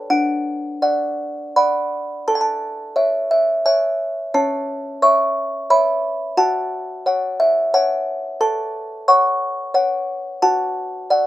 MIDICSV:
0, 0, Header, 1, 2, 480
1, 0, Start_track
1, 0, Key_signature, 3, "major"
1, 0, Tempo, 729040
1, 70, Time_signature, 3, 2, 24, 8
1, 1031, Tempo, 700935
1, 1991, Tempo, 678733
1, 7861, End_track
2, 0, Start_track
2, 0, Title_t, "Music box"
2, 0, Program_c, 0, 10
2, 66, Note_on_c, 0, 62, 46
2, 66, Note_on_c, 0, 78, 63
2, 530, Note_off_c, 0, 62, 0
2, 536, Note_off_c, 0, 78, 0
2, 541, Note_on_c, 0, 74, 33
2, 543, Note_on_c, 0, 78, 35
2, 1002, Note_off_c, 0, 74, 0
2, 1003, Note_off_c, 0, 78, 0
2, 1029, Note_on_c, 0, 83, 71
2, 1030, Note_on_c, 0, 74, 34
2, 1031, Note_on_c, 0, 78, 36
2, 1491, Note_off_c, 0, 74, 0
2, 1492, Note_off_c, 0, 78, 0
2, 1499, Note_off_c, 0, 83, 0
2, 1518, Note_on_c, 0, 81, 67
2, 1520, Note_on_c, 0, 69, 52
2, 1567, Note_off_c, 0, 81, 0
2, 1570, Note_on_c, 0, 80, 51
2, 1609, Note_on_c, 0, 81, 62
2, 1617, Note_off_c, 0, 80, 0
2, 1977, Note_off_c, 0, 69, 0
2, 1985, Note_on_c, 0, 73, 40
2, 1988, Note_on_c, 0, 76, 42
2, 2205, Note_off_c, 0, 81, 0
2, 2224, Note_off_c, 0, 76, 0
2, 2232, Note_on_c, 0, 76, 69
2, 2446, Note_off_c, 0, 73, 0
2, 2467, Note_off_c, 0, 76, 0
2, 2478, Note_on_c, 0, 73, 36
2, 2478, Note_on_c, 0, 80, 84
2, 2479, Note_on_c, 0, 76, 47
2, 2934, Note_off_c, 0, 73, 0
2, 2935, Note_off_c, 0, 76, 0
2, 2943, Note_off_c, 0, 80, 0
2, 2963, Note_on_c, 0, 73, 48
2, 2965, Note_on_c, 0, 61, 55
2, 2965, Note_on_c, 0, 81, 62
2, 3427, Note_off_c, 0, 81, 0
2, 3431, Note_off_c, 0, 73, 0
2, 3432, Note_off_c, 0, 61, 0
2, 3444, Note_on_c, 0, 73, 36
2, 3445, Note_on_c, 0, 85, 74
2, 3449, Note_on_c, 0, 76, 40
2, 3897, Note_off_c, 0, 73, 0
2, 3899, Note_off_c, 0, 76, 0
2, 3906, Note_off_c, 0, 85, 0
2, 3925, Note_on_c, 0, 73, 42
2, 3927, Note_on_c, 0, 83, 81
2, 3928, Note_on_c, 0, 76, 48
2, 4374, Note_off_c, 0, 73, 0
2, 4376, Note_off_c, 0, 76, 0
2, 4384, Note_off_c, 0, 83, 0
2, 4400, Note_on_c, 0, 66, 51
2, 4400, Note_on_c, 0, 78, 48
2, 4403, Note_on_c, 0, 81, 72
2, 4867, Note_off_c, 0, 66, 0
2, 4868, Note_off_c, 0, 78, 0
2, 4886, Note_on_c, 0, 73, 41
2, 4889, Note_on_c, 0, 78, 39
2, 5096, Note_off_c, 0, 81, 0
2, 5124, Note_on_c, 0, 76, 80
2, 5336, Note_off_c, 0, 73, 0
2, 5338, Note_off_c, 0, 78, 0
2, 5354, Note_off_c, 0, 76, 0
2, 5365, Note_on_c, 0, 73, 45
2, 5367, Note_on_c, 0, 78, 44
2, 5367, Note_on_c, 0, 80, 92
2, 5813, Note_off_c, 0, 73, 0
2, 5814, Note_off_c, 0, 78, 0
2, 5823, Note_off_c, 0, 80, 0
2, 5837, Note_on_c, 0, 69, 64
2, 5838, Note_on_c, 0, 81, 76
2, 6294, Note_off_c, 0, 81, 0
2, 6298, Note_off_c, 0, 69, 0
2, 6314, Note_on_c, 0, 85, 75
2, 6315, Note_on_c, 0, 73, 50
2, 6316, Note_on_c, 0, 78, 51
2, 6761, Note_off_c, 0, 73, 0
2, 6762, Note_off_c, 0, 78, 0
2, 6770, Note_off_c, 0, 85, 0
2, 6783, Note_on_c, 0, 73, 48
2, 6786, Note_on_c, 0, 78, 56
2, 7237, Note_off_c, 0, 73, 0
2, 7239, Note_off_c, 0, 78, 0
2, 7263, Note_on_c, 0, 78, 58
2, 7265, Note_on_c, 0, 66, 68
2, 7265, Note_on_c, 0, 81, 92
2, 7732, Note_off_c, 0, 78, 0
2, 7733, Note_off_c, 0, 66, 0
2, 7745, Note_on_c, 0, 74, 47
2, 7749, Note_on_c, 0, 78, 57
2, 7861, Note_off_c, 0, 74, 0
2, 7861, Note_off_c, 0, 78, 0
2, 7861, Note_off_c, 0, 81, 0
2, 7861, End_track
0, 0, End_of_file